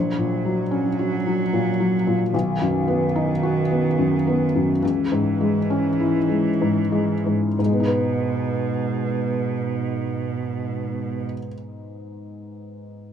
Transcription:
0.00 2.29 A#1 soft
0.00 2.29 F#3 soft
0.18 0.61 A#2 soft
0.45 0.88 F#3 soft
0.71 1.14 C#4 soft
0.99 1.42 F#4 soft
1.26 1.69 F#3 soft
1.53 1.96 A#2 soft
1.80 2.23 F#3 soft
2.07 2.34 A#2 soft
2.33 4.78 B1 soft
2.33 4.78 D#3 medium
2.61 3.04 F#2 soft
2.88 3.31 B3 soft
3.16 3.59 D#4 soft
3.43 3.87 F#4 soft
3.71 4.15 B3 soft
3.99 4.43 F#2 soft
4.27 4.72 B3 soft
4.55 4.83 F#2 soft
4.82 7.55 C#2 soft
4.82 7.31 E3 medium
5.12 5.57 G#2 soft
5.41 5.87 G#3 soft
5.70 6.18 C#4 soft
6.00 6.48 E4 soft
6.29 6.80 G#3 soft
6.61 7.13 G#2 soft
6.92 7.45 G#3 soft
7.26 7.57 G#2 soft
7.59 11.25 G#2 soft
7.59 11.26 B2 soft
7.66 11.32 G#3 soft
7.73 11.39 B3 soft
7.80 11.46 D#4 soft
7.86 11.52 B4 soft

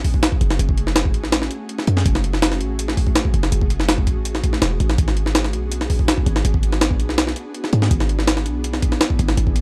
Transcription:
0.00 4.95 A3 medium
0.00 4.95 C#4 medium
0.00 7.87 F#4 medium
0.00 9.61 G#4 medium
0.04 kick loud
0.04 open hi-hat medium
0.14 kick loud
0.23 snare loud
0.23 closed hi-hat medium
0.32 kick loud
0.41 0.58 F#1 medium
0.41 closed hi-hat medium
0.51 snare medium
0.59 1.16 F#1 loud
0.59 closed hi-hat medium
0.69 kick loud
0.78 closed hi-hat medium
0.87 snare soft
0.96 snare loud
0.96 closed hi-hat medium
1.05 kick loud
1.14 1.49 A1 medium
1.14 closed hi-hat medium
1.24 snare soft
1.32 snare loud
1.32 closed hi-hat medium
1.42 snare soft
1.51 closed hi-hat medium
1.69 closed hi-hat medium
1.79 snare soft
1.87 2.04 F#2 loud
1.87 closed hi-hat medium
1.97 snare medium
2.06 2.62 F#1 loud
2.06 kick loud
2.06 closed hi-hat medium
2.15 snare soft
2.24 closed hi-hat medium
2.33 snare soft
2.42 snare loud
2.42 closed hi-hat medium
2.52 snare soft
2.61 2.96 A1 medium
2.61 closed hi-hat medium
2.79 closed hi-hat medium
2.88 snare soft
2.97 kick medium
2.97 open hi-hat medium
3.07 kick medium
3.15 snare loud
3.15 closed hi-hat medium
3.25 kick medium
3.34 3.50 F#1 loud
3.34 closed hi-hat medium
3.43 snare medium
3.52 4.08 F#1 loud
3.52 closed hi-hat medium
3.61 kick loud
3.70 closed hi-hat medium
3.80 snare soft
3.89 snare loud
3.89 closed hi-hat medium
3.98 kick loud
4.07 4.42 A1 medium
4.07 kick medium
4.07 closed hi-hat medium
4.25 closed hi-hat medium
4.35 snare soft
4.44 kick medium
4.44 closed hi-hat medium
4.53 snare soft
4.62 4.78 E1 medium
4.62 snare loud
4.62 closed hi-hat medium
4.80 4.97 A1 loud
4.80 closed hi-hat medium
4.90 snare medium
4.98 5.55 G#1 loud
4.98 9.61 B3 medium
4.98 9.61 D4 medium
4.98 kick loud
4.98 closed hi-hat medium
5.08 snare soft
5.17 closed hi-hat medium
5.26 snare soft
5.35 snare loud
5.35 closed hi-hat medium
5.44 snare soft
5.53 5.88 B1 medium
5.53 closed hi-hat medium
5.72 closed hi-hat medium
5.81 snare soft
5.90 kick medium
5.90 open hi-hat medium
5.99 kick loud
6.08 snare loud
6.08 closed hi-hat medium
6.18 kick medium
6.26 6.43 G#1 loud
6.26 closed hi-hat medium
6.36 snare medium
6.45 7.01 G#1 loud
6.45 closed hi-hat medium
6.54 kick loud
6.63 closed hi-hat medium
6.72 snare soft
6.81 snare loud
6.81 closed hi-hat medium
6.91 kick loud
7.00 7.35 B1 medium
7.00 closed hi-hat medium
7.09 snare soft
7.18 snare loud
7.18 closed hi-hat medium
7.27 snare soft
7.36 closed hi-hat medium
7.54 closed hi-hat medium
7.64 snare soft
7.73 7.89 G#2 loud
7.73 closed hi-hat medium
7.82 snare medium
7.91 8.48 G#1 loud
7.91 9.61 E4 medium
7.91 kick loud
7.91 closed hi-hat medium
8.00 snare soft
8.09 closed hi-hat medium
8.19 snare soft
8.27 snare loud
8.27 closed hi-hat medium
8.37 snare soft
8.46 8.81 B1 medium
8.46 closed hi-hat medium
8.64 closed hi-hat medium
8.73 snare soft
8.82 kick loud
8.82 closed hi-hat medium
8.92 snare soft
9.01 snare loud
9.01 closed hi-hat medium
9.10 kick loud
9.19 9.36 G#1 loud
9.19 closed hi-hat medium
9.28 snare medium
9.37 9.61 G#1 loud
9.37 closed hi-hat medium
9.47 kick loud
9.56 closed hi-hat medium

